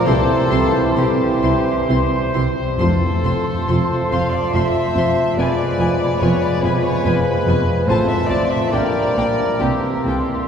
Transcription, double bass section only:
\new Staff \with { instrumentName = "Double bass section" } { \clef bass \time 3/4 \key f \major \tempo 4 = 69 c,8 c,8 c,8 c,8 c,8 c,8 | f,,8 f,,8 f,,8 f,,8 f,,8 f,,8 | f,,8 f,,8 f,,8 f,,8 f,,8 f,,8 | a,,8 a,,8 bes,,8 bes,,8 c,8 c,8 | }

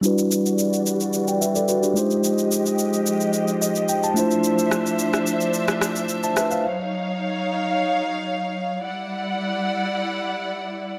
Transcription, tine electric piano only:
\new Staff \with { instrumentName = "Tine electric piano" } { \time 4/4 \key d \dorian \tempo 4 = 109 << { r2 r16 <d'' g''>16 <b' e''>16 <a' d''>16 <fis' b'>16 <d' g'>8 r16 | r2 r8 ees''8 g''16 a''8. | r2. r16 <e'' a''>16 <b' e''>16 <c'' f''>16~ | <c'' f''>16 r2. r8. |
r1 | } \\ { <g d' e' fis' b'>2.~ <g d' e' fis' b'>8 <aes ees' f' g' c''>8~ | <aes ees' f' g' c''>2.~ <aes ees' f' g' c''>8 <a d' e' f' c''>8~ | <a d' e' f' c''>2.~ <a d' e' f' c''>8 r8 | r1 |
r1 | } >> }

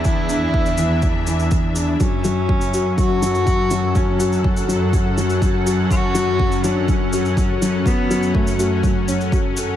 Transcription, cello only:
\new Staff \with { instrumentName = "Cello" } { \time 4/4 \key fis \minor \tempo 4 = 123 e'2. r8 d'8 | cis'2 fis'2 | cis'4 r2. | fis'4. d'8 cis'4. r8 |
b4 a8 a4 r4. | }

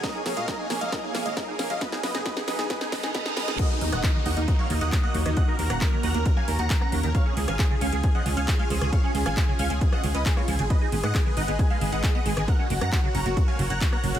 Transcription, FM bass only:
\new Staff \with { instrumentName = "FM bass" } { \clef bass \time 4/4 \key ees \minor \tempo 4 = 135 r8 bes,,16 bes,16 r8 bes,,16 bes,,16 r8 bes,,16 aes,,16 r8 bes,,16 bes,,16 | r8 ces,16 ges,,16 r8 ces,16 ces,16 r8 ces,16 ges,,16 r8 ces,16 ces,16 | r8 ees,16 ees,,16 r8 ees,16 ees,16 r8 ees,16 ees,16 r8 ees,16 ees,16 | r8 ees,16 ees,,16 r8 ees,16 ees,16 r8 ees,16 ees,16 r8 ees,16 ees,16 |
r8 des,16 aes,,16 r8 des,16 des,16 r8 des,16 des,16 r8 des,16 des,16 | r8 des,16 aes,,16 r8 des,16 des,16 r8 des,16 des,16 r8 des,16 aes,,16 | r8 aes,,16 aes,16 r8 aes,,16 aes,,16 r8 aes,,16 aes,,16 r8 aes,,16 aes,,16 | r8 ges,,16 ges,16 r8 ges,,16 ges,,16 r8 ges,,16 ges,,16 r8 ges,,16 ges,,16 | }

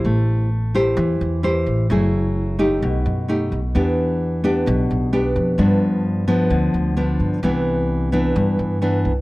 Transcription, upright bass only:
\new Staff \with { instrumentName = "Upright bass" } { \clef bass \time 4/4 \key c \major \tempo 4 = 130 a,,2 e,8 e,4 a,,8 | fis,,2 b,,8 fis,4 b,,8 | e,2 b,,8 b,,4 f,8 | g,2 d,8 d,4 g,8 |
c,2 g,8 g,4 c,8 | }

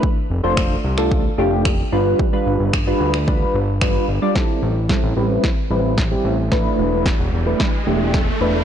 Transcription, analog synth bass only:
\new Staff \with { instrumentName = "Analog synth bass" } { \clef bass \time 4/4 \key a \minor \tempo 4 = 111 r8 f,,16 f,,8. c,4 f,,4 g,,8 | r8 g,,16 g,,8. d,4 g,,4 g,,16 r16 | r8 a,,8. a,,16 a,,8 r8 a,,4 a,,8~ | a,,8 e,,8. e,,16 e,,8 r8 e,,4 e,,8 | }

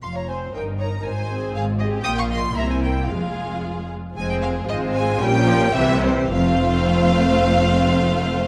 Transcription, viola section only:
\new Staff \with { instrumentName = "Viola section" } { \time 2/4 \key f \minor \tempo 4 = 114 << { r8 c''8 bes'8 bes'8 | r8 aes'4 aes'8 | f'4 e'4 | f'4. r8 |
c'4 c'4 | des'4 c'8 r8 | c'2~ | c'2 | } \\ { r8 c'8 ees'8 ees'8 | r8 c'4 c'8 | bes4 bes4 | aes4. r8 |
aes4 aes4 | g8 f8 e8 r8 | a2~ | a2 | } >> }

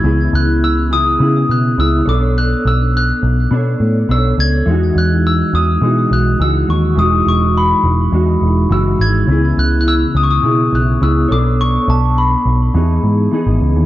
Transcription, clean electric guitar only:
\new Staff \with { instrumentName = "Clean electric guitar" } { \time 4/4 \key e \major \tempo 4 = 104 <cis b e' gis'>4. <b e' gis'>8 <cis b e' gis'>4 <cis b e' gis'>8 <b d' a' cis''>8~ | <b d' a' cis''>2 <b d' a' cis''>4 <b d' a' cis''>4 | <e gis dis' fis'>2 <e gis dis' fis'>4 <e gis dis' fis'>4 | <e gis dis' fis'>2 <e gis dis' fis'>4 <e gis dis' fis'>4 |
<cis b e' gis'>2 <cis b e' gis'>4 <cis b e' gis'>8 <b d' a' cis''>8~ | <b d' a' cis''>2 <e b dis' gis'>4 <e b dis' gis'>4 | }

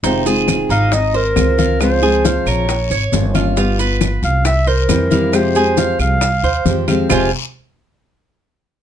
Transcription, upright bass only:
\new Staff \with { instrumentName = "Upright bass" } { \clef bass \time 4/4 \key f \minor \tempo 4 = 136 f,,4. aes,,4. des,4~ | des,4. bes,,4 aes,,8 g,,4~ | g,,4. c,4. f,4~ | f,4. c,4 ees,8 f,4 |
f,,8 r2. r8 | }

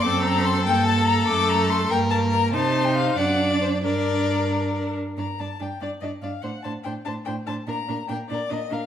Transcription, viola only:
\new Staff \with { instrumentName = "Viola" } { \time 6/8 \key g \minor \tempo 4. = 96 c'4. bes4. | a4. bes4. | ees'4. d'4. | d'2~ d'8 r8 |
d'8 d'8 d'8 d'8 d'8 d'8 | d'8 d'8 d'8 d'8 d'8 d'8 | d'8 d'8 d'8 d'8 d'8 d'8 | }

